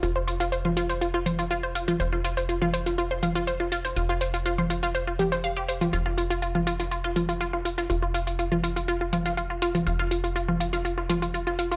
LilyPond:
<<
  \new Staff \with { instrumentName = "Synth arpeggio sound" } { \time 4/4 \key c \phrygian \tempo 4 = 122 f'16 c''16 f'16 f'16 c''16 f'16 f'16 c''16 f'16 f'16 c''16 f'16 f'16 c''16 f'16 f'16 | c''16 f'16 f'16 c''16 f'16 f'16 c''16 f'16 f'16 c''16 f'16 f'16 c''16 f'16 f'16 c''16 | f'16 f'16 c''16 f'16 f'16 c''16 f'16 f'16 c''16 f'16 g'16 c''16 f''16 g'16 c''16 f'16 | f'16 f'16 f'16 f'16 f'16 f'16 f'16 f'16 f'16 f'16 f'16 f'16 f'16 f'16 f'16 f'16 |
f'16 f'16 f'16 f'16 f'16 f'16 f'16 f'16 f'16 f'16 f'16 f'16 f'16 f'16 f'16 f'16 | f'16 f'16 f'16 f'16 f'16 f'16 f'16 f'16 f'16 f'16 f'16 f'16 f'16 f'16 f'16 f'16 | }
  \new Staff \with { instrumentName = "Analog synth bass" } { \clef bass \time 4/4 \key c \phrygian f,,1 | f,,1 | f,,1 | f,,1 |
f,,1 | f,,1 | }
  \new DrumStaff \with { instrumentName = "Drums" } \drummode { \time 4/4 hh8 hh16 hh16 hh16 cgl16 hh16 hh16 hh8 <cgl hh>16 <hh sn>16 hh16 hh16 hh16 <cgl hh>16 | hh16 sn16 hh16 hh16 hh16 cgl16 hh16 <hh sn>16 hh16 sn16 <cgl hh>16 hh16 hh16 sn16 hh16 <hh sn>16 | hh8 hh16 hh16 hh16 cgl16 hh16 hh16 hh8 <cgl hh>16 <hh sn>16 hh8 hh16 <cgl hh>16 | hh16 sn16 hh16 hh16 hh16 cgl16 hh16 <hh sn>16 hh16 sn16 <cgl hh>16 hh16 hh16 sn16 hh16 <hh sn>16 |
hh8 hh16 hh16 hh16 cgl16 hh16 hh16 hh8 <cgl hh>16 <hh sn>16 hh16 hh16 hh16 <cgl hh>16 | hh16 sn16 hh16 hh16 hh16 cgl16 hh16 <hh sn>16 hh16 sn16 <cgl hh>16 hh16 hh16 sn16 hh16 <hh sn>16 | }
>>